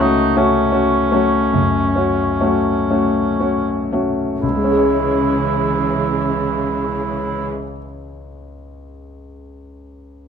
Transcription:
0, 0, Header, 1, 5, 480
1, 0, Start_track
1, 0, Key_signature, 4, "minor"
1, 0, Tempo, 742574
1, 481, Tempo, 805369
1, 961, Tempo, 874636
1, 1441, Tempo, 1000000
1, 2400, Time_signature, 12, 3, 24, 8
1, 2401, Tempo, 909091
1, 4321, Tempo, 925926
1, 5472, End_track
2, 0, Start_track
2, 0, Title_t, "Cor anglais"
2, 0, Program_c, 0, 69
2, 7, Note_on_c, 0, 63, 57
2, 240, Note_on_c, 0, 61, 53
2, 250, Note_off_c, 0, 63, 0
2, 2162, Note_off_c, 0, 61, 0
2, 2393, Note_on_c, 0, 64, 36
2, 4008, Note_off_c, 0, 64, 0
2, 5472, End_track
3, 0, Start_track
3, 0, Title_t, "Grand piano"
3, 0, Program_c, 1, 0
3, 0, Control_c, 1, 64, 127
3, 0, Note_on_c, 1, 37, 52
3, 0, Note_on_c, 1, 57, 39
3, 0, Note_on_c, 1, 61, 36
3, 0, Note_on_c, 1, 66, 39
3, 4, Note_off_c, 1, 66, 0
3, 4, Note_on_c, 1, 66, 39
3, 212, Note_off_c, 1, 57, 0
3, 213, Note_off_c, 1, 61, 0
3, 217, Note_off_c, 1, 66, 0
3, 236, Note_on_c, 1, 66, 42
3, 237, Note_on_c, 1, 57, 41
3, 238, Note_on_c, 1, 61, 40
3, 455, Note_off_c, 1, 66, 0
3, 456, Note_off_c, 1, 57, 0
3, 456, Note_off_c, 1, 61, 0
3, 466, Note_on_c, 1, 61, 37
3, 475, Note_on_c, 1, 66, 39
3, 683, Note_off_c, 1, 61, 0
3, 688, Note_off_c, 1, 66, 0
3, 703, Note_on_c, 1, 61, 34
3, 705, Note_on_c, 1, 57, 35
3, 708, Note_on_c, 1, 66, 38
3, 931, Note_off_c, 1, 61, 0
3, 932, Note_off_c, 1, 57, 0
3, 934, Note_off_c, 1, 66, 0
3, 950, Note_on_c, 1, 42, 38
3, 1184, Note_off_c, 1, 42, 0
3, 1184, Note_on_c, 1, 61, 34
3, 1190, Note_on_c, 1, 66, 37
3, 1413, Note_off_c, 1, 61, 0
3, 1416, Note_off_c, 1, 66, 0
3, 1431, Note_on_c, 1, 57, 32
3, 1433, Note_on_c, 1, 61, 33
3, 1438, Note_on_c, 1, 66, 35
3, 1646, Note_off_c, 1, 57, 0
3, 1647, Note_off_c, 1, 61, 0
3, 1649, Note_off_c, 1, 66, 0
3, 1672, Note_on_c, 1, 57, 31
3, 1672, Note_on_c, 1, 61, 30
3, 1675, Note_on_c, 1, 66, 34
3, 1892, Note_off_c, 1, 57, 0
3, 1892, Note_off_c, 1, 61, 0
3, 1893, Note_off_c, 1, 66, 0
3, 1909, Note_on_c, 1, 66, 29
3, 1912, Note_on_c, 1, 61, 28
3, 2142, Note_off_c, 1, 66, 0
3, 2143, Note_off_c, 1, 61, 0
3, 2161, Note_on_c, 1, 57, 24
3, 2162, Note_on_c, 1, 66, 26
3, 2163, Note_on_c, 1, 61, 25
3, 2381, Note_off_c, 1, 57, 0
3, 2382, Note_off_c, 1, 61, 0
3, 2382, Note_off_c, 1, 66, 0
3, 2404, Note_off_c, 1, 37, 0
3, 2404, Note_on_c, 1, 37, 26
3, 2415, Control_c, 1, 64, 0
3, 2443, Note_on_c, 1, 49, 24
3, 2478, Note_on_c, 1, 56, 26
3, 2517, Note_on_c, 1, 61, 28
3, 2547, Control_c, 1, 64, 127
3, 2555, Note_on_c, 1, 68, 25
3, 2589, Note_on_c, 1, 73, 27
3, 4019, Note_off_c, 1, 37, 0
3, 4058, Note_off_c, 1, 49, 0
3, 4093, Note_off_c, 1, 56, 0
3, 4132, Note_off_c, 1, 61, 0
3, 4170, Note_off_c, 1, 68, 0
3, 4204, Note_off_c, 1, 73, 0
3, 5472, End_track
4, 0, Start_track
4, 0, Title_t, "Viola section"
4, 0, Program_c, 2, 48
4, 4, Note_on_c, 2, 57, 45
4, 5, Note_on_c, 2, 54, 45
4, 180, Note_off_c, 2, 54, 0
4, 180, Note_off_c, 2, 57, 0
4, 713, Note_on_c, 2, 57, 42
4, 714, Note_on_c, 2, 54, 41
4, 896, Note_off_c, 2, 57, 0
4, 897, Note_off_c, 2, 54, 0
4, 1445, Note_on_c, 2, 54, 40
4, 1446, Note_on_c, 2, 57, 39
4, 1612, Note_off_c, 2, 54, 0
4, 1613, Note_off_c, 2, 57, 0
4, 2158, Note_on_c, 2, 54, 31
4, 2161, Note_on_c, 2, 57, 29
4, 2340, Note_off_c, 2, 54, 0
4, 2342, Note_off_c, 2, 57, 0
4, 2391, Note_on_c, 2, 56, 30
4, 2393, Note_on_c, 2, 52, 30
4, 4005, Note_off_c, 2, 56, 0
4, 4007, Note_off_c, 2, 52, 0
4, 5472, End_track
5, 0, Start_track
5, 0, Title_t, "Cello section"
5, 0, Program_c, 3, 48
5, 0, Note_on_c, 3, 49, 56
5, 104, Note_off_c, 3, 49, 0
5, 956, Note_on_c, 3, 49, 49
5, 1544, Note_off_c, 3, 49, 0
5, 2395, Note_on_c, 3, 49, 34
5, 4010, Note_off_c, 3, 49, 0
5, 5472, End_track
0, 0, End_of_file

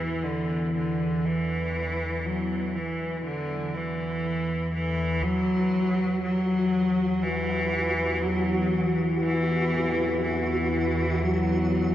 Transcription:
0, 0, Header, 1, 5, 480
1, 0, Start_track
1, 0, Tempo, 1000000
1, 593, Time_signature, 4, 2, 24, 8
1, 5736, End_track
2, 0, Start_track
2, 0, Title_t, "Synth texture"
2, 0, Program_c, 0, 99
2, 2516, Note_on_c, 0, 66, 82
2, 5736, Note_off_c, 0, 66, 0
2, 5736, End_track
3, 0, Start_track
3, 0, Title_t, "Church bells"
3, 0, Program_c, 1, 14
3, 0, Note_on_c, 1, 66, 61
3, 1072, Note_off_c, 1, 66, 0
3, 4675, Note_on_c, 1, 57, 61
3, 5736, Note_off_c, 1, 57, 0
3, 5736, End_track
4, 0, Start_track
4, 0, Title_t, "Cello"
4, 0, Program_c, 2, 42
4, 0, Note_on_c, 2, 52, 90
4, 113, Note_on_c, 2, 50, 77
4, 120, Note_off_c, 2, 52, 0
4, 353, Note_off_c, 2, 50, 0
4, 361, Note_on_c, 2, 50, 73
4, 601, Note_on_c, 2, 52, 85
4, 608, Note_off_c, 2, 50, 0
4, 1086, Note_on_c, 2, 54, 83
4, 1093, Note_off_c, 2, 52, 0
4, 1322, Note_on_c, 2, 52, 80
4, 1329, Note_off_c, 2, 54, 0
4, 1557, Note_off_c, 2, 52, 0
4, 1560, Note_on_c, 2, 50, 85
4, 1800, Note_on_c, 2, 52, 81
4, 1807, Note_off_c, 2, 50, 0
4, 2268, Note_off_c, 2, 52, 0
4, 2271, Note_on_c, 2, 52, 86
4, 2509, Note_on_c, 2, 54, 104
4, 2516, Note_off_c, 2, 52, 0
4, 2987, Note_off_c, 2, 54, 0
4, 2990, Note_on_c, 2, 54, 97
4, 3465, Note_on_c, 2, 52, 98
4, 3472, Note_off_c, 2, 54, 0
4, 3944, Note_on_c, 2, 54, 91
4, 3951, Note_off_c, 2, 52, 0
4, 4308, Note_off_c, 2, 54, 0
4, 4425, Note_on_c, 2, 52, 98
4, 4890, Note_off_c, 2, 52, 0
4, 4908, Note_on_c, 2, 52, 82
4, 5384, Note_on_c, 2, 54, 99
4, 5392, Note_off_c, 2, 52, 0
4, 5736, Note_off_c, 2, 54, 0
4, 5736, End_track
5, 0, Start_track
5, 0, Title_t, "Synth drone"
5, 0, Program_c, 3, 95
5, 0, Note_on_c, 3, 40, 65
5, 0, Note_on_c, 3, 52, 68
5, 2512, Note_off_c, 3, 52, 0
5, 2516, Note_off_c, 3, 40, 0
5, 2518, Note_on_c, 3, 52, 73
5, 2522, Note_on_c, 3, 40, 71
5, 5736, Note_off_c, 3, 40, 0
5, 5736, Note_off_c, 3, 52, 0
5, 5736, End_track
0, 0, End_of_file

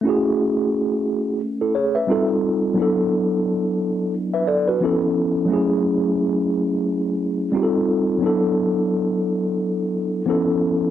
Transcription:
0, 0, Header, 1, 2, 480
1, 0, Start_track
1, 0, Key_signature, 3, "minor"
1, 0, Tempo, 681818
1, 31, Time_signature, 4, 2, 24, 8
1, 7677, End_track
2, 0, Start_track
2, 0, Title_t, "Tine electric piano"
2, 0, Program_c, 0, 4
2, 8, Note_on_c, 0, 57, 63
2, 22, Note_on_c, 0, 61, 53
2, 36, Note_on_c, 0, 64, 54
2, 48, Note_on_c, 0, 66, 61
2, 62, Note_on_c, 0, 68, 72
2, 974, Note_off_c, 0, 64, 0
2, 980, Note_off_c, 0, 66, 0
2, 988, Note_off_c, 0, 68, 0
2, 1136, Note_on_c, 0, 69, 54
2, 1138, Note_on_c, 0, 64, 47
2, 1227, Note_off_c, 0, 69, 0
2, 1228, Note_off_c, 0, 64, 0
2, 1231, Note_on_c, 0, 73, 54
2, 1239, Note_on_c, 0, 68, 50
2, 1367, Note_off_c, 0, 73, 0
2, 1371, Note_off_c, 0, 68, 0
2, 1372, Note_on_c, 0, 76, 57
2, 1376, Note_on_c, 0, 71, 46
2, 1431, Note_off_c, 0, 57, 0
2, 1439, Note_off_c, 0, 61, 0
2, 1458, Note_on_c, 0, 55, 65
2, 1465, Note_on_c, 0, 60, 58
2, 1475, Note_on_c, 0, 63, 63
2, 1479, Note_on_c, 0, 65, 60
2, 1488, Note_on_c, 0, 69, 73
2, 1601, Note_off_c, 0, 76, 0
2, 1603, Note_off_c, 0, 71, 0
2, 1929, Note_on_c, 0, 54, 65
2, 1942, Note_on_c, 0, 59, 59
2, 1945, Note_off_c, 0, 55, 0
2, 1948, Note_off_c, 0, 60, 0
2, 1953, Note_off_c, 0, 63, 0
2, 1955, Note_off_c, 0, 65, 0
2, 1955, Note_on_c, 0, 62, 61
2, 1960, Note_off_c, 0, 69, 0
2, 1969, Note_on_c, 0, 64, 57
2, 1984, Note_on_c, 0, 69, 75
2, 2909, Note_off_c, 0, 69, 0
2, 3053, Note_on_c, 0, 76, 57
2, 3057, Note_on_c, 0, 71, 50
2, 3145, Note_off_c, 0, 76, 0
2, 3148, Note_off_c, 0, 71, 0
2, 3149, Note_on_c, 0, 74, 60
2, 3151, Note_on_c, 0, 69, 50
2, 3286, Note_off_c, 0, 74, 0
2, 3287, Note_off_c, 0, 69, 0
2, 3292, Note_on_c, 0, 71, 58
2, 3301, Note_on_c, 0, 66, 47
2, 3352, Note_off_c, 0, 54, 0
2, 3358, Note_off_c, 0, 59, 0
2, 3365, Note_off_c, 0, 62, 0
2, 3372, Note_off_c, 0, 64, 0
2, 3383, Note_on_c, 0, 53, 64
2, 3391, Note_on_c, 0, 59, 60
2, 3398, Note_on_c, 0, 61, 60
2, 3404, Note_on_c, 0, 64, 62
2, 3412, Note_on_c, 0, 69, 72
2, 3521, Note_off_c, 0, 71, 0
2, 3526, Note_off_c, 0, 66, 0
2, 3840, Note_on_c, 0, 54, 69
2, 3857, Note_on_c, 0, 57, 58
2, 3862, Note_off_c, 0, 61, 0
2, 3867, Note_off_c, 0, 53, 0
2, 3870, Note_on_c, 0, 61, 62
2, 3871, Note_off_c, 0, 59, 0
2, 3878, Note_off_c, 0, 64, 0
2, 3881, Note_off_c, 0, 69, 0
2, 3885, Note_on_c, 0, 64, 60
2, 3896, Note_on_c, 0, 68, 75
2, 5267, Note_off_c, 0, 54, 0
2, 5276, Note_off_c, 0, 57, 0
2, 5282, Note_off_c, 0, 61, 0
2, 5290, Note_off_c, 0, 64, 0
2, 5293, Note_on_c, 0, 55, 66
2, 5295, Note_off_c, 0, 68, 0
2, 5302, Note_on_c, 0, 60, 64
2, 5311, Note_on_c, 0, 63, 63
2, 5315, Note_on_c, 0, 65, 62
2, 5324, Note_on_c, 0, 67, 56
2, 5370, Note_on_c, 0, 69, 74
2, 5372, Note_off_c, 0, 67, 0
2, 5762, Note_on_c, 0, 54, 73
2, 5778, Note_on_c, 0, 59, 60
2, 5782, Note_off_c, 0, 55, 0
2, 5786, Note_off_c, 0, 60, 0
2, 5790, Note_on_c, 0, 62, 60
2, 5791, Note_off_c, 0, 63, 0
2, 5793, Note_off_c, 0, 65, 0
2, 5802, Note_on_c, 0, 64, 61
2, 5807, Note_off_c, 0, 69, 0
2, 5815, Note_on_c, 0, 69, 76
2, 7188, Note_off_c, 0, 54, 0
2, 7196, Note_off_c, 0, 59, 0
2, 7202, Note_off_c, 0, 62, 0
2, 7208, Note_off_c, 0, 64, 0
2, 7215, Note_off_c, 0, 69, 0
2, 7221, Note_on_c, 0, 53, 70
2, 7225, Note_on_c, 0, 59, 64
2, 7235, Note_on_c, 0, 61, 65
2, 7237, Note_on_c, 0, 64, 65
2, 7249, Note_on_c, 0, 69, 79
2, 7677, Note_off_c, 0, 53, 0
2, 7677, Note_off_c, 0, 59, 0
2, 7677, Note_off_c, 0, 61, 0
2, 7677, Note_off_c, 0, 64, 0
2, 7677, Note_off_c, 0, 69, 0
2, 7677, End_track
0, 0, End_of_file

